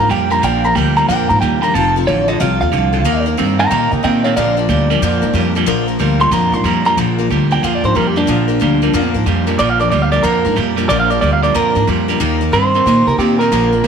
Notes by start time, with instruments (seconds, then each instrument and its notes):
Already playing: steel-string acoustic guitar A#4
0.00 clean electric guitar A#5
0.09 upright bass F2, clean electric guitar A#2 G3 G5, steel-string acoustic guitar F3 A#3 D4 A#4
0.30 clean electric guitar A#2 G3 A#5, steel-string acoustic guitar F3 A#3 D4 A#4
0.42 upright bass A#1, clean electric guitar A#2 F3 G5, steel-string acoustic guitar A#2 D3 F3 A#3 D4 A#4
0.64 steel-string acoustic guitar F3 A#3 D4 A#4, clean electric guitar A#5
0.75 upright bass D2, clean electric guitar A#2 G3 G5, steel-string acoustic guitar F3 A#3 D4 A#4
0.96 clean electric guitar A#2 G3 A#5, steel-string acoustic guitar F3 A#3 D4 A#4
1.08 upright bass F2, clean electric guitar A#2 F3 G5, steel-string acoustic guitar A#2 D3 F3 A#3 D4 A#4
1.29 upright bass G#2, steel-string acoustic guitar F3 D4 A#4, clean electric guitar A#5
1.41 upright bass D#2, clean electric guitar A#2 G3 G5, steel-string acoustic guitar F3 A#3 D4 A#4
1.61 clean electric guitar A#2 G3 A#5, steel-string acoustic guitar F3 A#3 D4 A#4
1.74 upright bass F1, clean electric guitar F2 C3 A5, steel-string acoustic guitar F3 C4 F4 A4
1.96 steel-string acoustic guitar C4 F4 A4
2.07 upright bass A1, clean electric guitar F2 D3 C#5, steel-string acoustic guitar F3 C4 F4 A4
2.28 clean electric guitar F2 D3 D#5, steel-string acoustic guitar C4 F4 A4
2.40 upright bass C2, clean electric guitar F2 C3 F5, steel-string acoustic guitar F3 C4 F4 A4
2.61 upright bass D#2, steel-string acoustic guitar C4 F4 A4, clean electric guitar F5
2.72 upright bass C2, clean electric guitar F2 D3, steel-string acoustic guitar F3 C4 F4 A4
2.93 clean electric guitar F2 D3, steel-string acoustic guitar C4 F4 A4
3.05 upright bass D#2, steel-string acoustic guitar D#3 G3 A#3 D#4 A#4, clean electric guitar D#3 A#3
3.26 steel-string acoustic guitar A#3 D#4 A#4
3.37 upright bass G2, clean electric guitar D#3 C4, steel-string acoustic guitar G3 A#3 D#4 A#4
3.59 clean electric guitar D#3 C4 G5 A#5, steel-string acoustic guitar A#3 D#4 A#4
3.70 upright bass A#2, steel-string acoustic guitar D#3 G3 A#3 D#4 A#4, clean electric guitar D#3 A#3 G5 A#5
3.91 upright bass C3, steel-string acoustic guitar A#3 D#4 A#4, clean electric guitar D#5 G5
4.03 upright bass A#2, clean electric guitar D#3 C4 D#5 G5, steel-string acoustic guitar G3 A#3 D#4 A#4
4.24 clean electric guitar D#3 C4 C#5 F5, steel-string acoustic guitar A#3 D#4 A#4
4.36 upright bass A#1, clean electric guitar A#2 F3 D5 F5, steel-string acoustic guitar A#2 D3 F3 A#3 D4 A#4
4.57 steel-string acoustic guitar F3 A#3 D4 A#4, clean electric guitar D5
4.69 upright bass D2, clean electric guitar A#2 G3, steel-string acoustic guitar F3 A#3 D4 A#4
4.90 clean electric guitar A#2 G3, steel-string acoustic guitar F3 A#3 D4 A#4
5.02 upright bass F2, clean electric guitar A#2 F3, steel-string acoustic guitar A#2 D3 F3 A#3 D4 A#4
5.22 upright bass G#2, steel-string acoustic guitar F3 A#3 D4 A#4
5.33 upright bass F2, clean electric guitar A#2 G3, steel-string acoustic guitar F3 A#3 D4 A#4
5.55 clean electric guitar A#2 G3, steel-string acoustic guitar F3 A#3 D4 A#4
5.66 upright bass A#1, steel-string acoustic guitar A#2 D3 F3 A#3 D4 A#4, clean electric guitar A#2 F3
5.87 steel-string acoustic guitar F3 A#3 D4 A#4
5.99 upright bass D2, clean electric guitar A#2 G3, steel-string acoustic guitar F3 A#3 D4 A#4
6.20 clean electric guitar A#2 G3 C6, steel-string acoustic guitar F3 A#3 D4 A#4
6.31 upright bass F2, clean electric guitar A#2 F3 A#5, steel-string acoustic guitar A#2 D3 F3 A#3 D4 A#4
6.52 upright bass G#2, steel-string acoustic guitar F3 A#3 D4 A#4, clean electric guitar C6
6.64 upright bass F2, clean electric guitar A#2 G3 A#5, steel-string acoustic guitar F3 A#3 D4 A#4
6.85 clean electric guitar A#2 G3 A#5, steel-string acoustic guitar F3 A#3 D4 A#4
6.97 upright bass A#1, clean electric guitar A#2 F3, steel-string acoustic guitar A#2 D3 F3 A#3 D4 A#4
7.18 steel-string acoustic guitar F3 A#3 D4 A#4
7.30 upright bass D2, clean electric guitar A#2 G3, steel-string acoustic guitar F3 A#3 D4 A#4
7.51 clean electric guitar A#2 G3 G5, steel-string acoustic guitar F3 A#3 D4 A#4
7.63 upright bass F2, clean electric guitar A#2 F3 F5, steel-string acoustic guitar A#2 D3 F3 A#3 D4 A#4
7.75 clean electric guitar D5
7.84 upright bass G#2, steel-string acoustic guitar F3 A#3 D4 A#4, clean electric guitar C5
7.95 upright bass F2, clean electric guitar A#2 G3 A#4, steel-string acoustic guitar F3 A#3 D4 A#4
8.07 clean electric guitar G4
8.16 clean electric guitar A#2 G3 D4, steel-string acoustic guitar F3 A#3 D4 A#4
8.27 upright bass A#1, steel-string acoustic guitar A#2 D3 F3 A#3 D4 A#4, clean electric guitar A#2 F3
8.48 steel-string acoustic guitar F3 A#3 D4 A#4
8.60 upright bass D2, clean electric guitar A#2 G3, steel-string acoustic guitar F3 A#3 D4 A#4
8.82 clean electric guitar A#2 G3, steel-string acoustic guitar F3 A#3 D4 A#4
8.94 upright bass F2, steel-string acoustic guitar A#2 D3 F3 A#3 D4 A#4, clean electric guitar A#2 F3
9.14 upright bass G#2, steel-string acoustic guitar F3 A#3 D4 A#4
9.26 upright bass F2, clean electric guitar A#2 G3, steel-string acoustic guitar F3 A#3 D4 A#4
9.47 clean electric guitar A#2 G3, steel-string acoustic guitar F3 A#3 D4 A#4
9.59 upright bass A#1, steel-string acoustic guitar A#2 D3 F3 A#3 D4 A#4, clean electric guitar A#2 F3 D5
9.70 clean electric guitar F5
9.80 steel-string acoustic guitar F3 A#3 D4 A#4, clean electric guitar D5
9.91 upright bass D2, clean electric guitar A#2 G3 D5, steel-string acoustic guitar F3 A#3 D4 A#4
10.02 clean electric guitar F5
10.12 clean electric guitar A#2 G3 D5, steel-string acoustic guitar F3 A#3 D4 A#4
10.23 upright bass F2, steel-string acoustic guitar A#2 D3 F3 A#3 D4 A#4, clean electric guitar A#2 F3 A#4
10.45 upright bass G#2, steel-string acoustic guitar F3 A#3 D4 A#4
10.56 upright bass F2, clean electric guitar A#2 G3, steel-string acoustic guitar F3 A#3 D4 A#4
10.76 clean electric guitar A#2 G3, steel-string acoustic guitar F3 A#3 D4 A#4
10.89 upright bass A#1, clean electric guitar A#2 F3 D5, steel-string acoustic guitar A#2 D3 F3 A#3 D4 A#4
11.00 clean electric guitar F5
11.10 steel-string acoustic guitar F3 A#3 D4 A#4, clean electric guitar D5
11.21 upright bass D2, clean electric guitar A#2 G3 D5, steel-string acoustic guitar F3 A#3 D4 A#4
11.33 clean electric guitar F5
11.43 clean electric guitar A#2 G3 D5, steel-string acoustic guitar F3 A#3 D4 A#4
11.54 upright bass F2, clean electric guitar A#2 F3 A#4, steel-string acoustic guitar A#2 D3 F3 A#3 D4 A#4
11.75 upright bass G#2, steel-string acoustic guitar F3 A#3 D4 A#4
11.87 upright bass F2, clean electric guitar A#2 G3, steel-string acoustic guitar F3 A#3 D4 A#4
12.08 clean electric guitar A#2 G3, steel-string acoustic guitar F3 A#3 D4 A#4
12.20 upright bass D#2, steel-string acoustic guitar D#3 G3 A#3 D#4 A#4, clean electric guitar D#3 A#3
12.41 steel-string acoustic guitar A#3 D#4 A#4
12.53 upright bass G2, clean electric guitar D#3 C4 C5, steel-string acoustic guitar G3 A#3 D#4 A#4
12.74 clean electric guitar D#3 C4, steel-string acoustic guitar A#3 D#4 A#4
12.86 upright bass A#2, clean electric guitar D#3 A#3, steel-string acoustic guitar D#3 G3 A#3 D#4 A#4
13.07 upright bass C3, steel-string acoustic guitar A#3 D#4 A#4, clean electric guitar A#4
13.18 upright bass A#2, clean electric guitar D#3 C4 G4, steel-string acoustic guitar G3 A#3 D#4 A#4
13.39 clean electric guitar D#3 C4 A#4, steel-string acoustic guitar A#3 D#4 A#4
13.52 upright bass A#1, steel-string acoustic guitar A#2 D3 F3 A#3 D4 A#4, clean electric guitar A#2 F3
13.73 steel-string acoustic guitar F3 A#3 D4 A#4
13.84 upright bass D2, clean electric guitar A#2, steel-string acoustic guitar F3 A#3